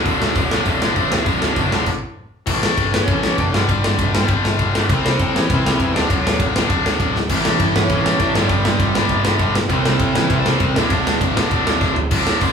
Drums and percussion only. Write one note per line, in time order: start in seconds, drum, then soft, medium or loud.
0.06 kick loud
0.06 open hi-hat medium
0.22 snare loud
0.35 kick loud
0.35 open hi-hat medium
0.51 snare loud
0.66 kick loud
0.66 open hi-hat medium
0.82 snare loud
0.96 kick loud
0.96 open hi-hat soft
1.12 snare loud
1.26 kick loud
1.26 open hi-hat medium
1.42 snare loud
1.56 kick loud
1.56 open hi-hat medium
1.72 snare loud
1.86 kick medium
1.86 crash medium
2.47 kick loud
2.47 crash loud
2.63 snare loud
2.77 kick loud
2.77 ride medium
2.94 snare loud
3.08 kick loud
3.08 ride medium
3.23 snare loud
3.38 kick loud
3.38 ride medium
3.54 snare loud
3.69 kick loud
3.69 ride medium
3.84 snare loud
3.99 kick loud
3.99 ride medium
4.15 snare loud
4.28 kick loud
4.28 ride medium
4.45 snare loud
4.59 kick loud
4.59 ride medium
4.75 snare loud
4.89 kick loud
4.89 ride medium
5.06 snare loud
5.19 kick loud
5.19 ride medium
5.36 snare loud
5.50 kick loud
5.50 ride medium
5.66 snare loud
5.80 kick loud
5.80 ride medium
5.96 snare loud
6.10 kick loud
6.10 ride medium
6.27 snare loud
6.40 kick loud
6.40 ride medium
6.56 snare loud
6.70 kick loud
6.70 ride medium
6.86 snare loud
7.00 kick loud
7.00 ride medium
7.16 snare medium
7.29 kick loud
7.29 crash loud
7.45 snare loud
7.60 kick loud
7.60 ride medium
7.76 snare loud
7.89 kick loud
7.89 ride medium
8.06 snare loud
8.20 kick loud
8.20 ride medium
8.35 snare loud
8.49 kick loud
8.49 ride medium
8.65 snare loud
8.80 kick loud
8.80 ride medium
8.95 snare loud
9.09 kick loud
9.09 ride medium
9.25 snare loud
9.39 kick loud
9.39 ride medium
9.55 snare loud
9.70 kick loud
9.70 ride medium
9.86 snare loud
9.99 kick loud
9.99 ride medium
10.15 snare loud
10.30 kick loud
10.30 ride medium
10.46 snare loud
10.60 kick loud
10.60 ride medium
10.76 snare loud
10.90 kick loud
10.90 ride medium
11.07 snare loud
11.21 kick loud
11.21 ride medium
11.37 snare loud
11.51 kick loud
11.51 ride medium
11.67 snare loud
11.81 kick loud
11.81 snare medium
11.96 floor tom medium
12.11 kick loud
12.11 crash loud
12.27 snare loud
12.41 kick loud
12.41 open hi-hat medium